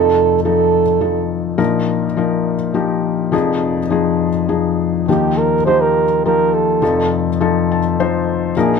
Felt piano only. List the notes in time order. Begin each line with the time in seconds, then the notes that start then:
Already playing: F1 F2 F3 D#4 A4
0.45 F3 D#4 A4
1.01 F3 D#4 A4
1.58 A#1 A#2 F3 D#4 A#4
2.17 F3 D#4 A#4
2.74 F3 D#4 G4
3.32 F1 F2 F3 D#4 G#4
3.90 F3 D#4 G#4
4.49 F3 D#4 G#4
5.08 D#2 F3 D#4 G4
5.66 F3 D#4 G4
6.25 F3 D#4 G4
6.82 F1 F2 F3 D#4 A4
7.41 F3 D#4 A4
7.72 A5
8.00 F3 D#4 C5
8.57 A#1 A#2 F3 D#4 A#4